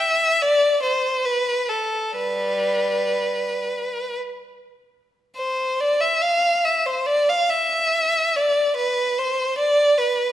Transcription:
0.00 E5
0.42 D5
0.82 C5
1.25 B4
1.69 A4
2.17 G3 B4
5.36 C5
5.80 D5
6.01 E5
6.22 F5
6.65 E5
6.86 C5
7.06 D5
7.29 F5
7.49 E5
8.36 D5
8.77 B4
9.19 C5
9.58 D5
9.98 B4

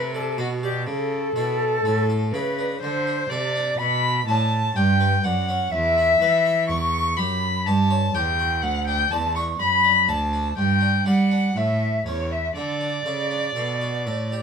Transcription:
Already playing: C3 A4 B4
0.13 A4 D5
0.38 B2 F#4 A4
0.63 G4 D5
0.87 C#3 A4
1.35 B2 E4
1.84 A2 E4
2.10 A4
2.33 C#3 E4 B4
2.59 D4
2.81 D3 C5
3.07 D4
3.30 C3 A4 D5
3.56 D4
3.78 B2 B5
4.27 A2 D4 A5
4.75 G2 D4 G5
5.01 B4
5.24 F#2 D4 F#5
5.49 C#4
5.72 E2 E5
5.98 E4
6.21 E3 B4
6.45 E4
6.69 E2 C#6
7.17 F#2 G4 B5
7.66 G2 G4 A5
7.90 C#5
8.14 E2 G4 G5
8.39 F#4
8.62 D2 F#5
8.87 D4 G5
9.11 E2 D5 A5
9.35 D4 C#6
9.60 F#2 B5
9.84 D4
10.08 D2 D5 A5
10.33 D4
10.57 G2 G5
10.81 D4
11.06 G3 D5 F#5
11.32 D4
11.56 A2 E5
12.06 E2 C#4 C#5
12.31 E5
12.55 D3 D5
12.81 D4
13.06 C#3 A4
13.31 D4
13.56 B2 A4
13.81 F#4
14.06 A2 A4
14.32 G4

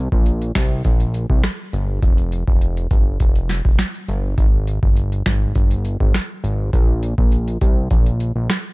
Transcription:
0.12 A#1, kick
0.26 closed hi-hat
0.42 closed hi-hat
0.55 C2, finger snap, kick, snare, closed hi-hat
0.85 A#1, kick, closed hi-hat
1.00 closed hi-hat
1.14 closed hi-hat
1.30 C2, kick
1.44 finger snap, cross-stick, snare, closed hi-hat
1.73 G1, closed hi-hat
2.02 F1, kick, closed hi-hat
2.18 closed hi-hat
2.32 closed hi-hat
2.48 F1, kick
2.61 closed hi-hat
2.77 closed hi-hat
2.91 G1, kick, closed hi-hat
3.20 F1, kick, closed hi-hat
3.36 closed hi-hat
3.49 snare, closed hi-hat
3.65 F1, kick
3.79 finger snap, snare, closed hi-hat
3.94 closed hi-hat
4.08 G1, closed hi-hat
4.38 G#1, kick, closed hi-hat
4.67 closed hi-hat
4.83 G1, kick
4.97 closed hi-hat
5.12 closed hi-hat
5.26 G#1, finger snap, kick, snare, closed hi-hat
5.55 G1, kick, closed hi-hat
5.71 closed hi-hat
5.85 closed hi-hat
6.00 G#1, kick
6.14 finger snap, cross-stick, snare, closed hi-hat
6.44 G#1, closed hi-hat
6.73 A#1, kick, closed hi-hat
7.03 closed hi-hat
7.18 A#1, kick
7.32 closed hi-hat
7.48 closed hi-hat
7.61 C2, kick, closed hi-hat
7.91 A#1, kick, closed hi-hat
8.06 closed hi-hat
8.20 closed hi-hat
8.36 A#1
8.50 finger snap, cross-stick, snare, closed hi-hat

